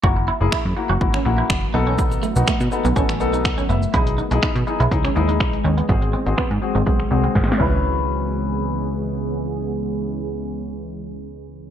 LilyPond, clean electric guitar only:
\new Staff \with { instrumentName = "Clean electric guitar" } { \time 4/4 \key cis \minor \tempo 4 = 123 fis'16 r16 e'16 r16 e'16 r8 fis'16 r16 cis'16 r16 e'16 r8 dis'16 cis'16 | b16 r16 a16 r16 a16 r8 b16 cis'16 r8 dis'16 r16 cis'16 b16 r16 | e'16 r16 dis'16 r16 dis'16 r8 e'16 r16 cis'16 r16 dis'16 r8 cis'16 b16 | gis16 r16 bis16 r16 b16 r8 bis16 gis16 r8 bis16 r16 bis16 e'8~ |
e'8 r2. r8 | r1 | }